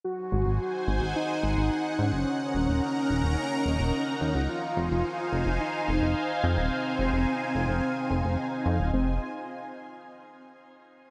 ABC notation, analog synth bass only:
X:1
M:4/4
L:1/16
Q:1/4=108
K:Fphr
V:1 name="Analog synth bass" clef=bass
z2 A,,, A,,, z2 A,,, A,,, z2 A,,, A,,, z2 A,, G,,, | z2 E,,, E,,, z2 E,,, E,,, z2 E,,, E,,, z2 E,, D,, | z2 F,,, F,,, z2 F,,, F,,, z2 F,,, F,,, z2 F,, E,,, | z2 F,,, F,,, z2 F,,, F,,, z2 F,,, F,,, z2 F,, E,,, |
F,,,2 z12 z2 |]